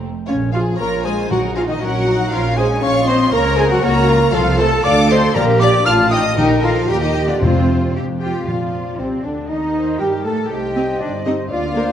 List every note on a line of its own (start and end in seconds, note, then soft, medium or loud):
0.27 0.74 A#1 medium
0.27 0.52 C#3 medium
0.27 0.52 C#4 medium
0.27 0.37 C#4 medium
0.27 0.35 F4 medium
0.27 0.35 C#5 medium
0.27 0.53 C#5 medium
0.53 0.80 F3 medium
0.53 0.66 F4 medium
0.53 0.63 F4 medium
0.53 0.79 G#4 medium
0.53 0.61 F5 medium
0.53 0.59 F5 medium
0.78 1.25 A#1 medium
0.78 0.91 A#3 medium
0.78 1.27 F4 medium
0.78 1.05 A#4 medium
0.78 1.04 A#4 medium
0.78 1.05 C#5 medium
0.78 1.04 A#5 loud
0.78 1.06 A#5 medium
1.03 1.30 G#3 medium
1.03 1.17 G#4 medium
1.03 1.14 G#4 medium
1.03 1.31 C5 medium
1.03 1.29 G#5 medium
1.03 1.30 G#5 medium
1.30 1.76 A#1 medium
1.30 2.03 A#2 medium
1.30 1.56 F#3 medium
1.30 1.81 D#4 medium
1.30 1.38 F#4 medium
1.30 1.42 F#4 medium
1.30 1.56 A#4 medium
1.30 1.56 F#5 medium
1.30 1.39 F#5 medium
1.56 1.62 F3 medium
1.56 1.62 F4 medium
1.56 1.69 F4 medium
1.56 1.61 G#4 medium
1.56 1.62 F5 medium
1.56 1.63 F5 medium
1.68 1.74 D#3 medium
1.68 1.81 D#4 medium
1.68 1.74 F#4 medium
1.68 1.74 D#5 medium
1.68 1.81 D#5 medium
1.81 2.27 A#1 medium
1.81 2.31 F#3 medium
1.81 2.08 C#4 medium
1.81 2.31 F#4 medium
1.81 2.32 F#4 medium
1.81 2.31 A#4 medium
1.81 2.31 F#5 medium
1.81 2.33 F#5 loud
2.08 2.33 D#4 medium
2.31 2.77 A#1 medium
2.31 2.42 F3 medium
2.31 2.83 C#4 medium
2.31 2.60 F4 medium
2.31 2.57 F4 medium
2.31 2.57 A#4 medium
2.31 2.57 F5 loud
2.31 2.58 F5 medium
2.57 2.82 G#3 medium
2.57 2.65 G#4 medium
2.57 2.83 G#4 medium
2.57 2.66 C5 medium
2.57 2.83 G#5 loud
2.57 2.84 G#5 loud
2.81 3.28 A#1 medium
2.81 3.07 C#4 medium
2.81 3.34 F4 medium
2.81 3.08 C#5 medium
2.81 2.95 C#5 loud
2.81 3.08 F5 loud
2.81 3.07 C#6 loud
2.81 3.09 C#6 medium
3.05 3.32 C4 loud
3.05 3.16 C5 medium
3.05 3.33 D#5 medium
3.05 3.32 C6 loud
3.05 3.33 C6 loud
3.10 3.34 C5 loud
3.32 3.78 C#2 loud
3.32 3.44 A#3 loud
3.32 3.58 A#4 loud
3.32 3.83 A#4 loud
3.32 3.61 A#4 medium
3.32 3.59 C#5 loud
3.32 3.39 A#5 loud
3.32 3.59 A#5 loud
3.57 3.63 G#3 medium
3.57 3.71 G#4 loud
3.57 3.72 G#4 loud
3.57 3.71 C5 loud
3.57 3.71 G#5 loud
3.57 3.64 G#5 loud
3.69 3.83 F#3 medium
3.69 3.83 F#4 medium
3.69 3.84 F#4 loud
3.69 3.83 A#4 medium
3.69 3.83 F#5 loud
3.69 3.85 F#5 loud
3.82 4.28 C#2 medium
3.82 4.32 A#3 loud
3.82 4.08 F#4 loud
3.82 4.33 A#4 medium
3.82 4.37 A#4 loud
3.82 4.33 C#5 loud
3.82 4.33 A#5 loud
3.82 4.33 A#5 medium
4.08 4.34 F4 medium
4.33 4.79 C2 loud
4.33 4.59 F3 loud
4.33 4.59 F4 loud
4.33 4.63 F4 loud
4.33 4.41 A4 loud
4.33 5.33 A4 loud
4.33 4.59 F5 loud
4.59 4.71 A3 loud
4.59 4.84 A4 loud
4.59 4.85 A4 loud
4.59 4.67 C5 loud
4.59 4.85 A5 loud
4.84 5.29 D2 loud
4.84 5.10 D4 loud
4.84 4.93 D5 medium
4.84 4.97 D5 loud
4.84 5.09 F5 loud
4.84 5.09 D6 loud
4.84 5.10 D6 loud
5.09 5.22 C4 medium
5.09 5.35 C5 medium
5.09 5.22 C5 loud
5.09 5.17 D#5 medium
5.09 5.36 C6 loud
5.35 5.80 A#1 loud
5.35 5.83 A#2 loud
5.35 5.60 A#3 loud
5.35 5.87 G4 loud
5.35 5.44 A#4 loud
5.35 5.62 A#4 loud
5.35 5.43 D5 loud
5.35 5.61 A#5 loud
5.35 5.44 A#5 loud
5.60 5.87 D4 loud
5.60 5.86 D5 loud
5.60 5.74 D5 loud
5.60 5.68 F5 medium
5.60 5.87 D6 loud
5.60 5.70 D6 loud
5.86 6.31 A1 medium
5.86 6.36 F4 medium
5.86 6.12 F4 loud
5.86 5.95 F5 medium
5.86 6.14 F5 medium
5.86 6.11 A5 loud
5.86 6.10 F6 loud
5.86 5.94 F6 loud
6.10 6.22 D#4 medium
6.10 6.37 D#5 medium
6.10 6.37 D#5 loud
6.10 6.20 G5 medium
6.10 6.16 D#6 loud
6.10 6.36 D#6 loud
6.36 6.82 A#1 medium
6.36 6.86 A#2 loud
6.36 6.62 D#3 loud
6.36 6.66 D#4 loud
6.36 6.63 D#4 medium
6.36 6.62 G4 loud
6.36 6.88 A#4 loud
6.36 6.45 D#5 loud
6.36 6.62 D#5 medium
6.61 6.88 F3 medium
6.61 6.89 F4 medium
6.61 6.91 F4 medium
6.61 6.87 A4 medium
6.61 6.88 F5 medium
6.61 6.70 F5 medium
6.87 7.35 D#2 medium
6.87 7.01 G3 medium
6.87 7.41 G4 medium
6.87 7.02 G4 medium
6.87 7.05 G4 medium
6.87 7.01 A#4 loud
6.87 7.02 G5 loud
6.91 7.03 G5 medium
7.00 7.27 D#3 medium
7.00 7.11 D#4 medium
7.00 7.31 D#4 medium
7.00 7.28 G4 medium
7.00 7.28 D#5 loud
7.00 7.32 D#5 medium
7.28 7.41 D3 medium
7.28 7.33 D4 medium
7.28 7.42 D4 medium
7.28 7.33 F4 medium
7.28 7.42 D5 medium
7.28 7.46 D5 medium
7.40 7.91 F2 medium
7.40 7.89 F2 medium
7.40 7.94 C3 medium
7.40 7.94 C4 medium
7.40 7.90 F4 medium
7.40 7.94 F4 medium
7.40 7.93 C5 medium
7.44 7.95 C4 medium
7.44 7.96 C5 medium
7.96 8.42 F2 medium
7.96 8.04 G4 medium
8.21 8.46 F4 medium
8.21 8.46 G4 medium
8.21 8.34 G4 medium
8.21 8.45 G5 medium
8.46 8.95 F2 soft
8.46 9.20 A#2 medium
8.46 8.94 F3 soft
8.46 8.95 F3 soft
8.46 8.95 F4 soft
8.46 9.00 F4 soft
8.46 8.99 F4 medium
8.46 9.01 F4 medium
8.46 9.46 D5 soft
8.46 8.97 F5 soft
8.98 9.07 C2 medium
8.98 9.10 C3 soft
8.98 9.24 C3 soft
8.98 9.24 C4 medium
8.98 9.26 C4 soft
8.98 9.24 C4 medium
8.98 9.26 C4 medium
8.98 9.06 C5 soft
9.22 9.49 D2 soft
9.22 9.49 D3 soft
9.22 9.50 D3 soft
9.22 9.50 D4 medium
9.22 9.51 D4 soft
9.22 9.50 D4 soft
9.22 9.49 D4 soft
9.22 9.30 D5 soft
9.48 10.00 D#2 medium
9.48 9.99 D#3 medium
9.48 10.01 D#3 medium
9.48 10.00 D#4 medium
9.48 10.01 D#4 medium
9.48 10.00 D#4 medium
9.48 10.01 D#4 medium
9.48 9.99 D#5 medium
9.48 9.57 D#5 medium
9.76 10.01 C5 medium
9.99 10.26 G2 medium
9.99 10.12 G3 medium
9.99 10.26 G3 medium
9.99 10.27 G4 medium
9.99 10.26 G4 medium
9.99 10.12 G4 medium
9.99 10.26 G4 medium
9.99 10.52 A#4 soft
9.99 10.07 G5 medium
10.24 10.51 A2 medium
10.24 10.36 A3 medium
10.24 10.51 A3 medium
10.24 10.51 A4 medium
10.24 10.37 A4 medium
10.24 10.51 A4 medium
10.24 10.50 A5 medium
10.50 10.93 C2 medium
10.50 11.48 G3 soft
10.50 11.47 D#4 soft
10.50 11.01 G4 medium
10.50 11.52 C5 medium
10.50 11.50 D#5 medium
10.50 11.00 G5 medium
10.75 10.88 C4 medium
10.75 10.88 G4 medium
10.75 10.88 D#5 soft
11.00 11.43 G1 medium
11.00 11.09 D4 medium
11.00 11.13 D4 medium
11.00 11.26 D5 medium
11.25 11.38 C4 medium
11.25 11.34 D#4 medium
11.25 11.55 D#4 medium
11.25 11.38 G4 medium
11.25 11.33 D#5 medium
11.25 11.38 D#5 medium
11.49 11.92 D2 medium
11.49 11.92 A#3 medium
11.49 11.92 D4 medium
11.49 11.92 F4 medium
11.49 11.92 D5 medium
11.49 11.75 D5 medium
11.49 11.92 F5 medium
11.75 11.88 A#3 medium
11.75 11.88 A#4 medium
11.75 11.92 C5 medium
11.75 11.89 F5 medium